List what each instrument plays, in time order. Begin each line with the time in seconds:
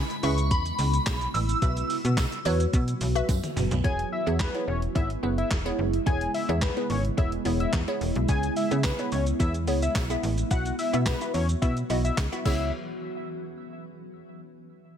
Already playing: ambient pad C#3 G#3 B3 E4, synth bell B5
0.10 closed hi-hat, shaker
0.23 fm bass C#2, synth pluck C#4 E4 G#4 B4 E5, synth bell C#6, open hi-hat, shaker
0.38 closed hi-hat, shaker
0.51 fm bass E2, synth bell B5, kick, closed hi-hat, shaker
0.66 closed hi-hat, shaker
0.79 fm bass C#2, open hi-hat, shaker
0.94 closed hi-hat, shaker
1.07 fm bass B1, kick, snare, clap, closed hi-hat, tambourine, shaker
1.21 closed hi-hat, shaker
1.34 fm bass A1, synth bell E6, open hi-hat, shaker
1.49 closed hi-hat, shaker
1.62 fm bass B1, ambient pad E3 F#3 F#4, synth pluck F#4 B4 E5, kick, closed hi-hat, shaker
1.77 closed hi-hat, shaker
1.90 open hi-hat, shaker
2.05 fm bass B2, closed hi-hat, shaker
2.17 kick, snare, clap, closed hi-hat, tambourine, shaker
2.32 closed hi-hat, shaker
2.45 fm bass E2, synth pluck F#4 B4 C#5, open hi-hat, shaker
2.60 closed hi-hat, shaker
2.73 fm bass B2, kick, closed hi-hat, shaker
2.88 closed hi-hat, shaker
3.01 fm bass B1, open hi-hat, shaker
3.15 synth pluck F#4 B4 E5, closed hi-hat, shaker
3.29 fm bass F#2, kick, closed hi-hat, high tom, tambourine, shaker
3.44 closed hi-hat, mid tom, shaker
3.56 fm bass F#1, mid tom, open hi-hat, shaker
3.71 fm bass B1, closed hi-hat, floor tom, shaker
3.84 ambient pad C#3 G#3 B3 E4, synth pluck B3 E4 G#4 C#5, analog synth lead G#5, kick, closed hi-hat
3.99 closed hi-hat
4.12 analog synth lead E5
4.26 fm bass E2, synth pluck B3 E4 G#4 C#5, closed hi-hat
4.40 analog synth lead B4, kick, snare, clap, closed hi-hat
4.54 synth pluck B3 E4 G#4 C#5, closed hi-hat
4.68 fm bass E1, analog synth lead C#5
4.82 closed hi-hat
4.95 fm bass G#1, synth pluck B3 E4 G#4 C#5, analog synth lead E5, kick, closed hi-hat
5.10 closed hi-hat
5.23 fm bass F#1, synth pluck B3 E4 G#4 B4
5.38 analog synth lead E5, closed hi-hat
5.51 fm bass E1, kick, snare, clap, closed hi-hat
5.65 synth pluck B3 E4 G#4 C#5, closed hi-hat
5.79 fm bass F#1
5.93 closed hi-hat
6.06 fm bass E1, synth pluck B3 E4 G#4 C#5, analog synth lead G#5, kick, closed hi-hat
6.21 closed hi-hat
6.34 analog synth lead E5, open hi-hat
6.49 fm bass E2, synth pluck B3 E4 G#4 C#5, closed hi-hat
6.62 analog synth lead B4, kick, snare, clap, closed hi-hat
6.77 synth pluck B3 E4 G#4 B4, closed hi-hat
6.90 fm bass G#1, analog synth lead C#5, open hi-hat
7.05 closed hi-hat
7.17 fm bass E1, synth pluck B3 E4 G#4 C#5, analog synth lead E5, kick, closed hi-hat
7.32 closed hi-hat
7.45 fm bass E1, synth pluck B3 E4 G#4 C#5, open hi-hat
7.60 analog synth lead E5, closed hi-hat
7.73 fm bass E2, kick, snare, clap, closed hi-hat
7.88 synth pluck B3 E4 G#4 C#5, closed hi-hat
8.01 fm bass E1, open hi-hat
8.15 fm bass B1, closed hi-hat
8.29 fm bass C#2, synth pluck B3 E4 G#4 C#5, analog synth lead G#5, kick, closed hi-hat, shaker
8.43 closed hi-hat, shaker
8.56 analog synth lead E5, open hi-hat, shaker
8.71 fm bass C#3, synth pluck B3 E4 G#4 C#5, closed hi-hat, shaker
8.84 analog synth lead B4, kick, snare, clap, closed hi-hat, tambourine, shaker
8.99 synth pluck B3 E4 G#4 C#5, closed hi-hat, shaker
9.12 fm bass C#2, analog synth lead C#5, open hi-hat, shaker
9.27 closed hi-hat, shaker
9.40 fm bass E2, synth pluck B3 E4 G#4 C#5, analog synth lead E5, kick, closed hi-hat, shaker
9.54 closed hi-hat, shaker
9.67 fm bass C#2, synth pluck B3 E4 G#4 C#5, open hi-hat, shaker
9.82 analog synth lead E5, closed hi-hat, shaker
9.95 fm bass B1, kick, snare, clap, closed hi-hat, tambourine, shaker
10.10 synth pluck B3 E4 G#4 E5, closed hi-hat, shaker
10.23 fm bass A1, open hi-hat, shaker
10.38 closed hi-hat, shaker
10.51 fm bass B1, ambient pad E3 F#3 F#4, synth pluck B3 E4 F#4 E5, analog synth lead F#5, kick, closed hi-hat, shaker
10.66 closed hi-hat, shaker
10.79 analog synth lead E5, open hi-hat, shaker
10.93 fm bass B2, synth pluck B3 E4 F#4 E5, closed hi-hat, shaker
11.06 analog synth lead B4, kick, snare, clap, closed hi-hat, tambourine, shaker
11.21 synth pluck B3 E4 F#4 E5, closed hi-hat, shaker
11.34 fm bass E2, analog synth lead C#5, open hi-hat, shaker
11.49 closed hi-hat, shaker
11.62 fm bass B2, synth pluck B3 E4 F#4 E5, analog synth lead E5, kick, closed hi-hat, shaker
11.77 closed hi-hat, shaker
11.90 fm bass B1, synth pluck B3 E4 F#4 D#5, open hi-hat, shaker
12.04 analog synth lead E5, closed hi-hat, shaker
12.18 fm bass C#2, kick, snare, clap, closed hi-hat, tambourine, shaker
12.32 synth pluck B3 E4 F#4 E5, closed hi-hat, shaker
12.45 fm bass C#2, synth pluck B3 E4 G#4 C#5, analog synth lead E5, kick, crash, tambourine